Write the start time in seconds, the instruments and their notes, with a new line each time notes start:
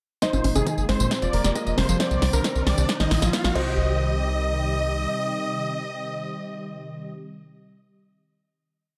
0.22 analog synth pad C3 D#3 G#3 A#3 D#4, grand piano D#4 D#5, supersaw synth C5, digital synth lead C5, kick, snare, closed hi-hat, tambourine, riser
0.33 analog synth bass G#1, synth pluck A#2, closed hi-hat, tambourine, high conga
0.44 analog synth bass G#1, open hi-hat, high conga
0.55 analog synth bass G#1, synth pluck C3, supersaw synth G#4, digital synth lead G#4, closed hi-hat, tambourine, high conga
0.67 synth pluck D#3, kick, closed hi-hat, tambourine
0.78 analog synth bass G#1, tambourine
0.89 analog synth bass G#1, synth pluck G#3, grand piano C4 C5, supersaw synth C5, digital synth lead C5, snare, open hi-hat
1.00 analog synth bass G#1, synth pluck A#2, closed hi-hat, tambourine
1.11 analog synth pad F3 G3 G#3 F4, kick, snare, closed hi-hat, tambourine
1.22 analog synth bass F1, synth pluck F3, supersaw synth D5, digital synth lead D5, closed hi-hat, tambourine
1.33 analog synth bass F1, grand piano A#3 A#4, open hi-hat
1.44 analog synth bass F1, synth pluck G3, snare, closed hi-hat, tambourine
1.55 synth pluck G#3, supersaw synth D#5, digital synth lead D#5, kick, closed hi-hat, tambourine
1.67 analog synth bass F1, closed hi-hat, tambourine
1.78 analog synth bass F1, synth pluck C3, supersaw synth C5, digital synth lead C5, snare, open hi-hat, high conga
1.89 analog synth bass G1, synth pluck F3, closed hi-hat, tambourine
2.00 analog synth pad D#3 D4 G4, grand piano C4 C5, digital synth lead D5, supersaw synth D5, kick, snare, closed hi-hat, tambourine
2.11 analog synth bass C2, synth pluck C3, closed hi-hat, tambourine
2.22 analog synth bass C2, snare, open hi-hat
2.33 analog synth bass C2, synth pluck D3, supersaw synth A#4, digital synth lead A#4, closed hi-hat, tambourine
2.44 synth pluck D#3, kick, snare, closed hi-hat, tambourine
2.56 analog synth bass C2, tambourine
2.67 analog synth bass C2, synth pluck G3, digital synth lead D5, supersaw synth D5, snare, open hi-hat
2.78 analog synth bass C2, synth pluck C3, closed hi-hat, tambourine
2.89 analog synth pad A#2 F3 D#4 F4, kick, snare, closed hi-hat, tambourine
3.00 analog synth bass A#1, synth pluck D#3, digital synth lead D#5, supersaw synth D#5, snare, closed hi-hat, tambourine
3.11 analog synth bass A#1, snare, open hi-hat
3.22 analog synth bass A#1, synth pluck F3, snare, closed hi-hat, tambourine
3.33 synth pluck A#3, digital synth lead F5, supersaw synth F5, kick, snare, closed hi-hat, tambourine
3.44 analog synth bass A#1, snare, closed hi-hat, tambourine
3.55 analog synth bass C2, synth pluck C3, analog synth pad C3 D#3 G3 G4, grand piano C5, digital synth lead D#5, supersaw synth D#5, kick, crash